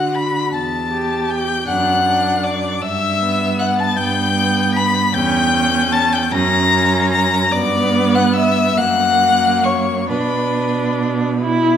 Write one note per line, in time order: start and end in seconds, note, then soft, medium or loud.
0.00 0.40 D3 medium
0.00 0.52 F#4 medium
0.00 0.17 F#5 medium
0.00 0.17 F#6 medium
0.15 0.53 B5 medium
0.15 0.55 B6 medium
0.53 1.54 E2 medium
0.53 1.31 A5 medium
0.53 1.31 A6 medium
0.91 1.66 G4 medium
1.29 1.69 G5 medium
1.29 1.67 G6 loud
1.66 2.68 F#2 medium
1.66 2.04 D4 medium
1.66 2.45 F#5 medium
1.66 2.45 F#6 loud
2.06 2.81 D4 medium
2.43 2.83 D5 medium
2.43 2.83 D6 medium
2.81 3.84 G2 medium
2.81 3.61 E5 loud
2.81 3.60 E6 loud
3.20 4.33 B3 medium
3.59 3.81 F#5 medium
3.59 3.77 F#6 medium
3.78 3.97 A5 medium
3.78 3.98 A6 loud
3.96 5.00 G2 medium
3.96 4.77 G5 loud
3.96 4.74 G6 loud
4.36 5.13 B3 medium
4.74 5.14 B5 loud
4.74 5.15 B6 loud
5.14 6.18 E2 medium
5.14 5.53 C#4 medium
5.14 5.91 G5 loud
5.14 5.94 G6 loud
5.54 6.31 C#4 medium
5.93 6.15 A5 loud
5.93 6.14 A6 loud
6.12 6.34 G5 medium
6.12 6.33 G6 loud
6.31 7.39 F#2 loud
6.31 6.71 C#4 medium
6.31 7.11 A#5 loud
6.31 7.11 A#6 loud
6.71 7.52 C#4 medium
7.12 7.54 A#5 loud
7.12 7.53 A#6 loud
7.52 8.74 G2 medium
7.52 8.79 B3 loud
7.52 8.16 D5 loud
7.52 8.16 D6 loud
8.15 8.35 F#5 medium
8.15 8.35 F#6 loud
8.33 8.79 E5 loud
8.33 8.79 E6 loud
8.77 10.11 F#2 medium
8.77 10.08 A#3 medium
8.77 9.66 F#5 loud
8.77 9.65 F#6 loud
9.64 10.09 C#5 medium
9.64 10.08 C#6 medium
10.09 11.77 B2 medium
10.09 11.30 D4 medium
10.09 11.39 B4 medium
10.09 11.38 B5 medium
11.41 11.77 E4 medium